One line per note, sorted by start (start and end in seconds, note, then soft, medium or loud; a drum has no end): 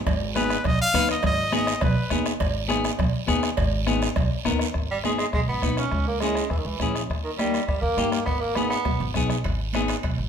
0.06 0.53 G#1 medium
0.06 bombo low medium
0.06 bombo rim medium
0.06 cowbell loud
0.06 high conga soft
0.06 low conga medium
0.06 long guiro medium
0.35 0.56 B3 medium
0.35 0.57 D#4 medium
0.35 0.57 G#4 medium
0.35 0.67 B4 medium
0.35 bombo rim medium
0.35 high conga medium
0.35 short guiro medium
0.50 bombo rim medium
0.50 short guiro medium
0.64 0.77 B1 medium
0.64 0.80 D#5 medium
0.64 bombo low medium
0.64 bombo rim medium
0.64 cowbell medium
0.64 high conga soft
0.64 low conga medium
0.64 long guiro medium
0.81 1.08 F5 loud
0.94 1.18 D#2 medium
0.94 1.15 B3 medium
0.94 1.15 D#4 medium
0.94 1.15 B4 medium
0.94 bombo low medium
0.94 bombo rim medium
0.94 high conga medium
0.94 low conga medium
0.94 short guiro medium
1.09 1.24 D#5 medium
1.09 bombo rim medium
1.09 short guiro medium
1.23 1.70 G#1 loud
1.23 1.52 D#5 loud
1.23 bombo low medium
1.23 bombo rim medium
1.23 cowbell loud
1.23 high conga soft
1.23 low conga medium
1.23 long guiro medium
1.52 1.73 B3 medium
1.52 1.73 D#4 medium
1.52 1.73 G#4 medium
1.52 1.82 D#5 medium
1.52 bombo rim medium
1.52 high conga medium
1.52 short guiro medium
1.67 bombo rim medium
1.67 short guiro medium
1.81 1.94 B1 loud
1.81 2.24 B4 medium
1.81 bombo low medium
1.81 bombo rim medium
1.81 cowbell medium
1.81 high conga soft
1.81 low conga medium
1.81 long guiro medium
2.10 2.34 D#2 medium
2.10 2.32 B3 medium
2.10 2.32 D#4 medium
2.10 2.32 G#4 medium
2.10 bombo rim medium
2.10 high conga medium
2.10 short guiro medium
2.26 bombo rim medium
2.26 short guiro medium
2.40 2.87 G#1 medium
2.40 bombo low medium
2.40 bombo rim medium
2.40 cowbell loud
2.40 high conga soft
2.40 long guiro medium
2.68 2.90 B3 medium
2.68 2.90 D#4 medium
2.68 2.90 G#4 loud
2.68 bombo rim medium
2.68 high conga medium
2.68 short guiro medium
2.84 bombo rim medium
2.84 short guiro medium
2.99 3.11 B1 medium
2.99 bombo low medium
2.99 bombo rim medium
2.99 cowbell medium
2.99 high conga soft
2.99 low conga medium
2.99 long guiro medium
3.27 3.52 D#2 loud
3.27 3.49 B3 medium
3.27 3.49 D#4 medium
3.27 3.49 G#4 medium
3.27 bombo rim medium
3.27 high conga medium
3.27 short guiro medium
3.43 bombo rim medium
3.43 short guiro medium
3.57 4.05 G#1 medium
3.57 bombo low medium
3.57 bombo rim medium
3.57 cowbell loud
3.57 long guiro medium
3.86 4.07 B3 medium
3.86 4.08 D#4 medium
3.86 4.08 G#4 medium
3.86 bombo rim medium
3.86 high conga medium
3.86 short guiro medium
4.02 bombo rim medium
4.02 short guiro medium
4.16 4.28 B1 loud
4.16 bombo low medium
4.16 bombo rim medium
4.16 cowbell medium
4.16 high conga soft
4.16 low conga medium
4.16 long guiro medium
4.45 4.69 D#2 medium
4.45 4.66 B3 medium
4.45 4.66 D#4 medium
4.45 4.66 A#4 medium
4.45 bombo low medium
4.45 bombo rim medium
4.45 high conga medium
4.45 short guiro medium
4.59 bombo rim medium
4.59 short guiro medium
4.74 5.22 G#1 medium
4.74 bombo low medium
4.74 bombo rim medium
4.74 high conga soft
4.91 4.97 G3 medium
5.04 5.11 G#3 medium
5.04 5.25 B3 medium
5.04 5.25 D#4 soft
5.04 5.25 G#4 medium
5.04 bombo rim medium
5.04 high conga medium
5.04 short guiro medium
5.18 5.26 G#3 medium
5.18 bombo rim medium
5.18 short guiro medium
5.33 5.45 B1 medium
5.33 5.41 G#3 medium
5.33 bombo low medium
5.33 bombo rim medium
5.33 high conga soft
5.33 long guiro medium
5.48 5.60 G#1 medium
5.48 5.76 B3 medium
5.62 5.86 B1 medium
5.62 5.84 B3 medium
5.62 5.84 D#4 medium
5.62 5.84 B4 medium
5.62 bombo low medium
5.62 bombo rim medium
5.62 high conga medium
5.62 short guiro medium
5.77 6.05 C#4 medium
5.77 bombo rim medium
5.77 short guiro medium
5.91 6.39 C#2 medium
5.91 bombo low medium
5.91 bombo rim medium
5.91 high conga soft
5.91 long guiro medium
6.07 6.20 A#3 medium
6.20 6.49 G#3 medium
6.20 6.43 C#4 medium
6.20 6.43 E4 medium
6.20 6.43 G#4 medium
6.20 bombo rim medium
6.20 high conga medium
6.20 short guiro medium
6.35 bombo rim medium
6.35 short guiro medium
6.50 6.63 E2 medium
6.50 6.59 E3 medium
6.50 bombo low medium
6.50 bombo rim medium
6.50 high conga soft
6.50 long guiro medium
6.57 6.67 D#3 medium
6.65 6.77 C#2 medium
6.65 6.95 E3 medium
6.80 7.04 A#1 medium
6.80 7.01 C#4 medium
6.80 7.01 E4 medium
6.80 7.02 G#4 medium
6.80 bombo low medium
6.80 bombo rim medium
6.80 high conga medium
6.80 short guiro medium
6.95 bombo rim medium
6.95 short guiro medium
7.09 7.57 D#2 medium
7.09 bombo low medium
7.09 bombo rim medium
7.09 high conga soft
7.09 long guiro medium
7.24 7.31 D#3 medium
7.38 7.65 G3 medium
7.38 7.60 A#3 medium
7.38 7.60 D#4 medium
7.38 7.60 G4 medium
7.38 bombo rim medium
7.38 high conga medium
7.38 short guiro medium
7.54 bombo rim medium
7.54 short guiro medium
7.66 7.80 G2 medium
7.66 7.81 G3 medium
7.66 bombo low medium
7.66 bombo rim medium
7.66 high conga soft
7.66 long guiro medium
7.81 7.94 D#2 medium
7.81 8.09 A#3 medium
7.97 8.21 G2 medium
7.97 8.18 A#3 medium
7.97 8.19 D#4 medium
7.97 8.19 G4 medium
7.97 bombo rim medium
7.97 high conga medium
7.97 short guiro medium
8.10 8.25 A#3 medium
8.10 bombo rim medium
8.10 short guiro medium
8.25 8.74 G#1 medium
8.25 8.42 B3 medium
8.25 bombo low medium
8.25 bombo rim medium
8.25 high conga soft
8.25 long guiro medium
8.41 8.57 A#3 medium
8.55 8.69 B3 medium
8.55 8.77 B3 medium
8.55 8.77 D#4 medium
8.55 8.77 G#4 medium
8.55 bombo rim medium
8.55 high conga medium
8.55 short guiro medium
8.70 9.11 B3 medium
8.70 bombo rim medium
8.70 short guiro medium
8.85 8.97 B1 medium
8.85 bombo low medium
8.85 bombo rim medium
8.85 high conga medium
8.85 long guiro medium
9.00 9.12 G#1 medium
9.00 low conga medium
9.14 9.39 B1 medium
9.14 9.36 B3 medium
9.14 9.36 D#4 medium
9.14 9.36 G#4 medium
9.14 bombo low medium
9.14 bombo rim medium
9.14 low conga loud
9.14 short guiro medium
9.29 bombo rim medium
9.29 low conga medium
9.29 short guiro medium
9.44 9.92 G#1 medium
9.44 bombo low medium
9.44 bombo rim medium
9.44 high conga soft
9.44 high timbale medium
9.44 long guiro medium
9.73 9.95 B3 medium
9.73 9.95 D#4 medium
9.73 9.95 G#4 medium
9.73 bombo rim medium
9.73 high conga medium
9.73 high timbale medium
9.73 short guiro medium
9.88 bombo rim medium
9.88 high timbale medium
9.88 short guiro medium
10.03 10.15 B1 medium
10.03 bombo low medium
10.03 bombo rim medium
10.03 high conga soft
10.03 high timbale medium
10.03 long guiro medium
10.18 10.29 G#1 medium